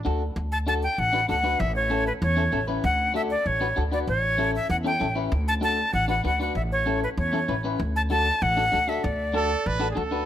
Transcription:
0.05 upright bass D2, clean electric guitar D4 F#4 A4
0.36 upright bass D2
0.52 flute A5
0.67 clean electric guitar D4 F#4 A4, flute A5
0.83 flute G5
0.98 upright bass A1, flute F#5
1.13 clean electric guitar D4 F#4 B4
1.29 upright bass D2, clean electric guitar D4 F#4 A4, flute F#5
1.43 clean electric guitar D4 F#4 B4
1.60 upright bass A1, flute E5
1.76 flute C#5
1.90 clean electric guitar C#4 E4 A4
2.07 flute B4
2.22 upright bass E2, flute C#5
2.37 clean electric guitar C#4 E4 A4
2.52 upright bass A1, clean electric guitar C#4 E4 A4
2.68 clean electric guitar C#4 E4 B4
2.84 upright bass D2, flute F#5
3.14 clean electric guitar D4 F#4 A4, flute E5
3.31 flute D5
3.46 upright bass A1, flute C#5
3.61 clean electric guitar D4 F#4 B4
3.76 upright bass D2, clean electric guitar D4 F#4 A4
3.92 clean electric guitar D4 F#4 B4, flute D5
4.07 upright bass A1, flute C#5
4.38 clean electric guitar C#4 E4 A4
4.55 flute E5
4.70 upright bass E2, flute F#5
4.84 clean electric guitar C#4 E4 A4, flute G5
5.00 upright bass A1, clean electric guitar C#4 E4 A4
5.15 clean electric guitar C#4 E4 B4
5.32 upright bass D2
5.48 flute A5
5.61 clean electric guitar D4 F#4 A4, flute A5
5.93 upright bass A1, flute F#5
6.08 clean electric guitar D4 F#4 B4, flute F#5
6.24 upright bass D2, clean electric guitar D4 F#4 B4, flute F#5
6.40 clean electric guitar D4 F#4 B4, flute F#5
6.55 upright bass A1, flute E5
6.72 flute C#5
6.86 clean electric guitar C#4 E4 A4
7.04 flute B4
7.17 upright bass E2, flute C#5
7.33 clean electric guitar C#4 E4 A4
7.48 upright bass A1, clean electric guitar C#4 E4 B4
7.64 clean electric guitar C#4 E4 B4
7.80 upright bass D2
7.96 flute A5
8.10 clean electric guitar D4 F#4 A4, flute A5
8.42 upright bass A1, flute F#5
8.57 clean electric guitar D4 F#4 A4
8.72 upright bass D2, clean electric guitar D4 F#4 A4
8.88 clean electric guitar D4 F#4 A4, flute E5
9.04 upright bass D2, flute D5
9.33 clean electric guitar D4 F#4 A4, trumpet A4
9.66 upright bass A1, trumpet B4
9.80 clean electric guitar D4 F#4 A4
9.91 trumpet G#4
9.95 upright bass D2, clean electric guitar D4 F#4 A4, trumpet A4
10.11 clean electric guitar D4 F#4 B4

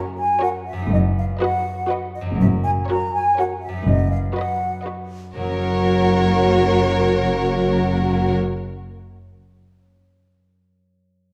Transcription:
Already playing: harp F#2 F#3 C#4 A#4, viola section F#4, violin section A#4 C#5
0.18 flute section G#5
0.41 viola section F#4, violin section A#4 C#5, flute section F#5
0.65 flute section E5
0.73 harp F#2
0.77 harp F#3
0.82 harp D#4
0.86 harp B4
0.91 double bass section F#1, cello section F#2, flute section D#5
1.18 flute section F5
1.40 viola section F#4, violin section B4 D#5, flute section F#5
1.88 viola section F#4, violin section B4 D#5
2.15 flute section D#5
2.21 harp F#2
2.26 harp F#3
2.30 harp C#4
2.35 harp A#4
2.39 double bass section F#1, cello section F#2, flute section E5
2.63 flute section G#5
2.88 viola section F#4, violin section A#4 C#5, flute section A#5
3.12 flute section G#5
3.38 viola section F#4, violin section A#4 C#5, flute section F#5
3.60 flute section E5
3.69 harp F#2
3.73 harp F#3
3.77 harp D#4
3.82 harp B4
3.86 double bass section F#1, cello section F#2, flute section D#5
4.10 flute section F5
4.35 viola section F#4, violin section B4 D#5, flute section F#5
4.84 viola section F#4, violin section B4 D#5
5.35 double bass section F#1, harp F#2, cello section F#2, viola section F#4, violin section A#4 C#5, flute section F#5
5.42 harp F#3
5.49 harp C#4
5.56 harp A#4
5.63 harp C#5

